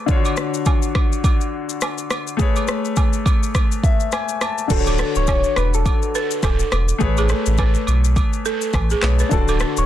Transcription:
0.06 D3 D4 F4, kick, shaker
0.11 C#5
0.16 F#4
0.25 high agogo, shaker
0.37 cross-stick, shaker
0.54 shaker
0.66 kick, high agogo, low woodblock, shaker
0.82 shaker
0.95 kick, cross-stick, high agogo
1.12 shaker
1.24 kick, high agogo, shaker
1.41 shaker
1.69 shaker
1.81 cross-stick, high agogo, low woodblock, shaker
1.98 shaker
2.10 cross-stick, high agogo, shaker
2.27 shaker
2.37 A3 G#4 B4, kick, shaker
2.42 C#5
2.56 high agogo, shaker
2.68 cross-stick, shaker
2.85 shaker
2.96 kick, high agogo, low woodblock, shaker
3.13 shaker
3.26 kick, high agogo, shaker
3.43 shaker
3.55 kick, cross-stick, high agogo, shaker
3.72 shaker
3.83 E5, kick, shaker
4.00 shaker
4.12 G#5, cross-stick, high agogo, low woodblock, shaker
4.29 shaker
4.41 A5, cross-stick, high agogo, shaker
4.58 shaker
4.68 D1 D3 D4 F#4 A4, kick, crash, shaker
4.73 C5
4.79 C#5
4.86 A4, high agogo, shaker
4.98 B4, cross-stick, shaker
5.15 D1 C#5, shaker
5.27 C#5, kick, high agogo, low woodblock, shaker
5.44 shaker
5.56 E1 B4, cross-stick, high agogo, shaker
5.74 A4, shaker
5.86 kick, high agogo, shaker
6.02 shaker
6.15 B4, shaker
6.31 shaker
6.43 D1 A4, kick, cross-stick, high agogo, low woodblock, shaker
6.59 shaker
6.72 E1, cross-stick, high agogo, shaker
6.89 shaker
6.98 A1 A3 G#4 B4, kick, shaker
7.03 C#5
7.17 G#4, high agogo, shaker
7.29 A4, cross-stick, shaker
7.46 A1, shaker
7.58 B4, kick, high agogo, low woodblock, shaker
7.74 shaker
7.87 B1, high agogo, shaker
8.05 shaker
8.16 kick, high agogo, shaker
8.33 shaker
8.45 A4, shaker
8.62 shaker
8.73 A1, kick, cross-stick, high agogo, low woodblock, shaker
8.90 G#4, shaker
9.01 B1 A3 G#4 B4 C#5, cross-stick, clap, high agogo, shaker
9.19 B4, shaker
9.29 D1 D3 D4 F#4 A4, kick, shaker
9.34 D5
9.48 A4, high agogo, shaker
9.60 B4, cross-stick, shaker
9.77 D1 C#5, shaker

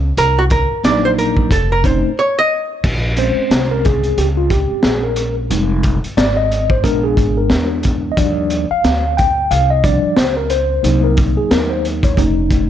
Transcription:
Already playing: C#2
0.17 C2 A#4, closed hi-hat
0.39 F#4
0.50 A#4, kick, closed hi-hat
0.71 muted upright bass stroke
0.84 A#1 F#3 A#3 D4 D#4 D5, snare, closed hi-hat
1.05 C5
1.18 A#4, closed hi-hat
1.37 kick
1.51 F1 A4, kick, closed hi-hat
1.72 A#4
1.84 A3 C4 C#4 D#4 C5, kick, closed hi-hat
2.04 muted upright bass stroke
2.19 C#5
2.39 D#5
2.84 A#1, kick, crash
3.17 G#3 C4 C#4 C5, closed hi-hat
3.37 muted upright bass stroke
3.51 C2, snare, closed hi-hat
3.71 A#4
3.85 G#4, kick, closed hi-hat
4.03 closed hi-hat
4.17 C#2 G4, closed hi-hat
4.37 F4
4.50 G4, kick, closed hi-hat
4.71 muted upright bass stroke
4.83 A#1 G#4, snare, closed hi-hat
5.03 A#4
5.16 closed hi-hat
5.50 F1 G3 G#3 D#4, closed hi-hat
5.83 kick, closed hi-hat
6.04 muted upright bass stroke, closed hi-hat
6.17 G#1 D5, snare, closed hi-hat
6.37 D#5
6.52 closed hi-hat
6.70 C5, kick
6.83 A#1 G#3 B3 D4 A#4, kick, closed hi-hat
7.04 G#4
7.17 G#1, kick, closed hi-hat
7.37 A#4
7.50 E2, snare, closed hi-hat
7.83 kick, closed hi-hat
8.12 D#5
8.17 D#2 F3 G3 D4 D5, kick, closed hi-hat
8.50 closed hi-hat
8.71 F5, muted upright bass stroke
8.84 D2, snare, closed hi-hat
9.17 G5, kick, closed hi-hat
9.51 C2 F5, closed hi-hat
9.70 D#5
9.83 F3 G3 D4 D5, kick, closed hi-hat
10.04 muted upright bass stroke
10.17 C#2 C5, snare, closed hi-hat
10.37 A#4
10.50 C5, closed hi-hat
10.83 C2 F#3 A#3 D#4, closed hi-hat
11.04 A#4
11.17 kick, closed hi-hat
11.37 G#4, muted upright bass stroke
11.51 D#2 A#4, snare, closed hi-hat
11.71 C5
11.85 closed hi-hat
12.03 C#5, kick, closed hi-hat
12.17 F1 A3 C#4 D#4, kick, closed hi-hat
12.51 kick, closed hi-hat

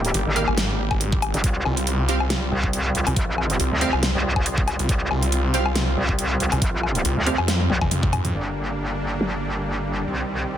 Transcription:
Already playing: F1 G3 A#3 G4
0.05 closed hi-hat
0.14 G1, closed hi-hat
0.26 G#1
0.36 A#3 G4 F5, closed hi-hat
0.48 G#1, low woodblock
0.58 snare, closed hi-hat
0.91 kick, low woodblock
1.01 closed hi-hat
1.12 kick
1.22 closed hi-hat, low woodblock
1.34 G1, closed hi-hat
1.44 C2 C4 F4, kick, closed hi-hat
1.65 C2, low woodblock
1.77 closed hi-hat
1.87 closed hi-hat
2.09 C4 G4 F5, closed hi-hat
2.20 low woodblock
2.30 snare, closed hi-hat
2.52 C2
2.64 kick
2.73 closed hi-hat
2.95 C2, closed hi-hat
3.07 C2, closed hi-hat, low woodblock
3.16 A#1, kick, closed hi-hat
3.38 low woodblock
3.50 closed hi-hat
3.60 C2, closed hi-hat
3.71 D2
3.81 C4 G4 F5, closed hi-hat
3.93 C2, low woodblock
4.03 snare, closed hi-hat
4.15 C2
4.36 C2, kick, low woodblock
4.46 closed hi-hat
4.58 kick
4.68 closed hi-hat, low woodblock
4.79 C2, closed hi-hat
4.89 C2, kick, closed hi-hat
5.11 C2, low woodblock
5.23 closed hi-hat
5.32 closed hi-hat
5.54 C4 G4 F5, closed hi-hat
5.66 low woodblock
5.75 snare, closed hi-hat
5.97 C2
6.09 kick
6.19 closed hi-hat
6.40 C2, closed hi-hat
6.52 C2, closed hi-hat, low woodblock
6.62 A#1, kick, closed hi-hat
6.83 low woodblock
6.95 closed hi-hat
7.05 C2, closed hi-hat
7.17 D2
7.26 C4 G4 F5, closed hi-hat
7.38 F2, low woodblock
7.48 snare, closed hi-hat, high tom
7.60 high tom
7.70 C2, high tom
7.81 F2, kick, mid tom, low woodblock
7.91 closed hi-hat, mid tom
8.03 kick, mid tom
8.13 closed hi-hat, mid tom, low woodblock
8.25 closed hi-hat, mid tom
8.34 G1 G3 A#3 D4, closed hi-hat
8.78 closed hi-hat
9.21 snare
9.64 closed hi-hat
9.86 closed hi-hat
10.07 C2 D#3 C4, closed hi-hat
10.50 closed hi-hat

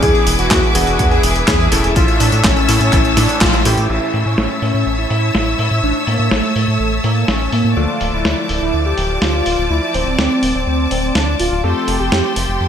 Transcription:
Already playing: E3 B3 D4 E4 G#4 D6
0.02 E2 G#4 B4 E5 G#5, kick, closed hi-hat, tambourine
0.15 tambourine
0.27 E1, open hi-hat, tambourine
0.39 E1 F#4, closed hi-hat, tambourine
0.51 E2, kick, snare, clap, closed hi-hat, tambourine
0.63 tambourine
0.75 E1 E3 B3 D4 E4 F#4 G#4, open hi-hat, tambourine
0.87 E1, closed hi-hat, tambourine
0.99 E2, kick, closed hi-hat, tambourine
1.11 G#4, tambourine
1.23 E1, open hi-hat, tambourine
1.36 closed hi-hat, tambourine
1.48 E2 G#4, kick, snare, clap, closed hi-hat, tambourine
1.60 tambourine
1.72 E1 A2 A3 C#4 E4 A4, open hi-hat, tambourine
1.84 E1, closed hi-hat, tambourine
1.96 A1 F4 C#5 A5 E6, kick, closed hi-hat, tambourine
2.08 closed hi-hat, tambourine
2.20 A2 D4, open hi-hat, tambourine
2.32 A2, closed hi-hat, tambourine
2.44 A1 C#4, kick, snare, clap, closed hi-hat, tambourine
2.56 closed hi-hat, tambourine
2.69 A2 A3 C#4 E4 A4, open hi-hat, tambourine
2.81 A2 C#4, closed hi-hat, tambourine
2.93 A1, kick, clap, closed hi-hat, tambourine
3.05 closed hi-hat, tambourine
3.17 A2 D4, snare, open hi-hat, tambourine
3.29 closed hi-hat, tambourine
3.41 A1 F4, kick, snare, clap, open hi-hat, tambourine
3.53 closed hi-hat, tambourine
3.65 A2 E3 A3 C#4 E4 G4, open hi-hat, tambourine
3.77 A2, closed hi-hat, tambourine
3.89 A1 A2 A3 C#4 E4 A4 C#5 E5 A5 E6, crash
4.14 A2, open hi-hat
4.26 A2 C#4
4.38 A1, snare
4.62 A2 C#4, open hi-hat
4.74 A2
4.86 A1
4.98 E4
5.10 A2, open hi-hat
5.35 A1 E4, snare
5.59 A2, open hi-hat
5.71 A2
5.83 A1 D4
6.07 A2 A#3, open hi-hat
6.19 A2
6.31 A1 A3, snare
6.56 A2, open hi-hat
6.68 A2 A3
6.80 A1
7.04 A2 A#3, open hi-hat
7.28 A1 C#4, snare
7.52 A2 A#3, open hi-hat
7.65 A2
7.77 D2 D3 F3 A3 D4 F4 A4 D5 D6
8.01 D1, open hi-hat
8.13 D1 E4
8.25 D2, snare
8.49 D1 E4, open hi-hat
8.61 D1
8.73 D2
8.85 G4
8.98 D1, open hi-hat
9.22 D2 F4, snare
9.46 D1, open hi-hat
9.58 D1
9.70 D2 E4
9.94 D1 C4, open hi-hat
10.06 D1
10.18 D2 C4, snare
10.43 D1, open hi-hat
10.55 D1 C4
10.67 D2
10.91 D1 C4, open hi-hat
11.15 D2 D4, snare
11.39 D1 F4, open hi-hat
11.52 D1
11.64 F2 F3 A3 C4 G4 A4 G5 C6
11.88 F1, open hi-hat
12.00 F1 G4
12.12 F2, snare
12.36 F1 G4, open hi-hat
12.48 F1
12.60 F2

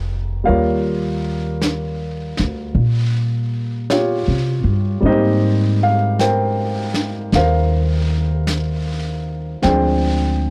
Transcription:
Already playing: F1 G#3 A#3 C#4 F4 C#5 G5
0.44 G3 A#3 A#4 C#5 F5, brush sweep
0.49 D#2 F4
1.62 brush sweep, snare, hi-hat pedal
2.37 D2, snare
2.75 A#2, brush sweep
3.90 F4 G4 C#5, brush sweep, snare, hi-hat pedal
4.28 C3
4.64 G2
5.00 G#2 G3 A#3 C4
5.05 D#4 G4 C5 D#5, brush sweep
5.83 F5
6.19 A#4 C5 G5, brush sweep, snare, hi-hat pedal
6.94 snare
7.32 D#2 A#4 C5 F5, brush sweep, snare
8.47 brush sweep, snare, hi-hat pedal
9.62 D2 F3 G#3 C4 C5 G5, brush sweep, snare
9.67 D4

